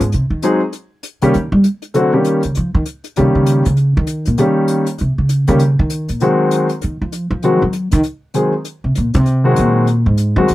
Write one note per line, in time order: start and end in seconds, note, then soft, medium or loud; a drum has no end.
0.00 0.12 G#2 medium
0.00 closed hi-hat soft
0.12 0.30 C3 medium
0.12 closed hi-hat soft
0.30 0.42 D#3 medium
0.42 0.59 F#3 medium
0.42 0.60 G#3 medium
0.42 0.60 C4 medium
0.42 0.60 D#4 medium
0.42 0.60 G#4 medium
0.42 closed hi-hat soft
0.72 closed hi-hat soft
1.03 closed hi-hat soft
1.22 1.34 C3 soft
1.22 1.33 D#3 medium
1.22 1.33 G3 medium
1.22 1.33 A#3 medium
1.22 1.33 C#4 medium
1.22 1.33 G4 medium
1.22 closed hi-hat soft
1.34 1.51 D#3 medium
1.34 closed hi-hat soft
1.52 1.64 G3 loud
1.64 closed hi-hat soft
1.82 closed hi-hat soft
1.94 2.11 D3 medium
1.94 2.11 F#3 medium
1.94 2.11 A3 medium
1.94 2.12 C4 medium
1.94 2.12 F#4 medium
1.94 closed hi-hat soft
2.13 2.40 D#3 medium
2.13 2.40 G3 soft
2.13 2.40 A#3 medium
2.13 2.40 C#4 medium
2.13 2.40 G4 medium
2.24 closed hi-hat soft
2.43 2.56 C#3 soft
2.43 closed hi-hat soft
2.55 2.74 F3 medium
2.55 closed hi-hat soft
2.75 2.82 D#3 medium
2.85 closed hi-hat medium
3.04 closed hi-hat soft
3.16 3.35 C3 medium
3.16 3.62 D#3 medium
3.16 3.62 G3 medium
3.16 3.62 A#3 medium
3.16 3.62 C#4 medium
3.16 3.63 G4 medium
3.16 closed hi-hat soft
3.35 3.63 C#3 medium
3.46 closed hi-hat medium
3.65 3.94 C#3 medium
3.65 closed hi-hat soft
3.77 closed hi-hat soft
3.97 4.25 D#3 loud
4.07 closed hi-hat medium
4.25 4.39 A#2 medium
4.25 closed hi-hat soft
4.38 4.84 D#3 medium
4.38 4.84 G3 medium
4.38 4.84 A#3 medium
4.38 4.84 C#4 medium
4.38 4.84 G4 medium
4.38 closed hi-hat soft
4.68 closed hi-hat soft
4.86 closed hi-hat soft
4.98 5.18 C3 medium
4.98 closed hi-hat soft
5.18 5.47 C#3 medium
5.29 closed hi-hat medium
5.47 5.77 C#3 loud
5.47 5.59 D#3 medium
5.47 5.59 G3 soft
5.47 5.59 A#3 medium
5.47 5.60 C#4 medium
5.47 5.60 G4 medium
5.47 closed hi-hat soft
5.59 closed hi-hat soft
5.79 6.08 D#3 loud
5.90 closed hi-hat medium
6.08 6.21 A#2 medium
6.08 closed hi-hat soft
6.20 6.67 D#3 medium
6.20 6.67 F#3 medium
6.20 6.67 G#3 medium
6.20 6.67 C4 medium
6.20 6.67 F#4 medium
6.20 closed hi-hat soft
6.51 closed hi-hat soft
6.69 closed hi-hat soft
6.81 7.01 D#3 medium
6.81 closed hi-hat soft
7.02 7.30 F3 medium
7.12 closed hi-hat medium
7.31 7.59 F3 medium
7.42 7.60 D#3 medium
7.42 7.61 F#3 medium
7.42 7.61 G#3 medium
7.42 7.61 C4 medium
7.42 7.61 F#4 medium
7.42 closed hi-hat soft
7.62 7.91 F#3 medium
7.73 closed hi-hat soft
7.91 8.00 D#3 loud
7.91 closed hi-hat soft
8.03 closed hi-hat soft
8.34 8.51 D#3 soft
8.34 8.52 F#3 soft
8.34 8.52 G#3 soft
8.34 8.52 C4 soft
8.34 8.52 G#4 medium
8.34 closed hi-hat soft
8.65 closed hi-hat soft
8.84 8.96 C3 medium
8.95 9.14 A#2 medium
8.95 closed hi-hat medium
9.14 9.54 C3 loud
9.14 closed hi-hat soft
9.26 closed hi-hat soft
9.44 9.85 D#3 medium
9.44 9.85 F#3 medium
9.44 9.85 G#3 medium
9.44 9.85 C4 medium
9.44 9.85 F#4 medium
9.56 10.04 A#2 medium
9.56 closed hi-hat medium
9.87 closed hi-hat soft
10.06 10.36 G#2 medium
10.17 closed hi-hat medium
10.36 10.48 D#3 medium
10.36 10.48 F#3 loud
10.36 10.48 F#3 medium
10.36 10.48 G#3 medium
10.36 10.48 C4 medium
10.36 10.48 F#4 medium
10.48 10.55 D#3 medium
10.48 closed hi-hat soft